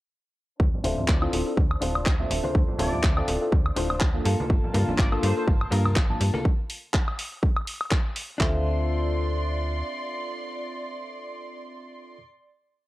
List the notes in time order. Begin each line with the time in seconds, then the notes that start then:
0.60 D2 D4 C5, kick
0.74 low conga
0.84 D1 C4 D4 F4 A4 C5 E5, open hi-hat, tambourine, high conga
0.97 D2, tambourine, low conga
1.08 D2 D5, kick, clap
1.21 C4 D4 E4 F4 A4 C5, high conga, high woodblock
1.33 D1, open hi-hat, tambourine
1.46 C4 E4 F4 A4
1.57 D2, kick, tambourine, high conga
1.71 high woodblock
1.81 D1 C4 D4 E4 F4 A4 C5, open hi-hat, tambourine
1.95 tambourine, high conga, high woodblock
2.06 D2, kick, clap
2.19 C4 F4 A4 E5, low conga
2.30 D1, open hi-hat, tambourine
2.44 D4 F4 C5, tambourine, high conga
2.55 D2, kick
2.68 low conga
2.79 D1 C4 D4 F4 A4 C5 D5 E5, open hi-hat, tambourine, high conga
2.92 D2, tambourine, low conga
3.03 D2, kick, clap
3.17 C4 D4 E4 F4 A4 D5, high conga, high woodblock
3.28 D1, open hi-hat, tambourine
3.41 C4 E4 F4 A4, tambourine
3.52 D2, kick, tambourine, high conga
3.66 high woodblock
3.76 D1 C4 D4 E4 F4 A4 C5, open hi-hat
3.90 tambourine, high conga, high woodblock
4.01 D2, kick, clap
4.14 A#3 D4 F4 A4, low conga
4.25 G2 A#3 F4 A4 A5, open hi-hat, tambourine
4.39 tambourine, high conga
4.50 G1, kick
4.64 low conga
4.74 G2 A#3 D4 F4 A4, open hi-hat, tambourine, high conga
4.88 G1, tambourine, low conga
4.98 G1 D5, kick, clap
5.12 A#3 D4 F4 A4, high conga, high woodblock
5.23 G2 C5, open hi-hat, tambourine
5.36 A#3 D4 F4 A4 C5, tambourine
5.47 G1, kick, tambourine, high conga
5.61 high woodblock
5.71 G2 A#3 D4 F4 A4 A#4, open hi-hat, tambourine
5.85 tambourine, high conga, high woodblock
5.96 G1, kick, clap
6.09 A#3 D4 F4 A5, low conga
6.20 G2, open hi-hat, tambourine
6.34 A#3 F4 A4, tambourine, high conga
6.45 kick
6.70 open hi-hat
6.94 kick, clap
7.08 high woodblock
7.19 open hi-hat
7.43 kick
7.56 high woodblock
7.67 open hi-hat
7.81 high woodblock
7.91 kick, clap
8.16 open hi-hat
8.38 D2 C4 D4 F4 A4 D5 E5 C6, kick, clap
8.43 C5